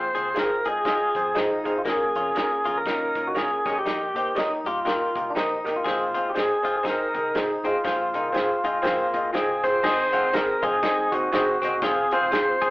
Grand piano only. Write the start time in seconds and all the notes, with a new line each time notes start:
Already playing: A#2
0.15 C4 F4 G#4 C5
0.35 C4 F4 G#4 C5
0.66 C4 F4 G#4 D#5
0.85 C4 F4 G#4 D#5
1.16 C4 F4 G#4 C5
1.36 C4 F4 G#4 C5
1.66 C4 F4 G#4 C5
1.85 A#2 A#3 C#4 F4 A#4
2.16 A#3 C#4 F4 C#5
2.36 A#3 C#4 F4 A#4
2.66 A#3 C#4 F4 A#4
2.86 A#3 C#4 F4 A#4
3.16 A#3 C#4 F4 A#4
3.37 A#3 C#4 F4 A#4
3.66 A#2 A#3 D#4 G4 A#4
4.16 A#3 D#4 G4 C5
4.35 A#3 D#4 G4 C#5
4.66 A#3 D#4 G4 A#4
4.85 A#3 D#4 G4 A#4
5.15 A#3 D#4 G4 A#4
5.36 A#3 D#4 G4 C5
5.65 A#3 D#4 G4 A#4
5.85 A#2 C4 D#4 G#4 C5
6.15 C4 D#4 G#4 C5
6.33 C4 D#4 G#4 C5
6.62 C4 D#4 G#4 C5
6.83 C4 D#4 G#4 C5
7.13 C4 D#4 G#4 A#4
7.35 C4 D#4 G#4 C5
7.64 C4 D#4 G#4 D#5
7.84 A#2 C4 F4 G#4 C5
8.13 C4 F4 G#4 A#4
8.32 C4 F4 G#4 C5
8.64 C4 F4 G#4 D#5 G#5
8.82 C4 F4 G#4 C5 F5
9.13 C4 F4 G#4 D#5 F5
9.32 C4 F4 G#4 D#5 F5
9.63 C4 F4 G#4 C5
9.83 G#2 C4 D#4 G#4 C5 D#5
10.12 C4 D#4 G#4 C5 F#5
10.32 C4 D#4 G#4 C5 D#5
10.62 C4 D#4 G#4 C5 D#5
10.83 C4 D#4 G#4 C5 D#5
11.13 C4 D#4 G#4 C5 D#5
11.33 C4 D#4 G#4 C5 D#5
11.64 C4 D#4 G#4 C5 D#5
11.82 C4 F4 G#4 C5 F5
12.12 C4 F4 G#4 C5 F5
12.31 C4 F4 G#4 C5 F5
12.61 C4 F4 G#4 C5 G#5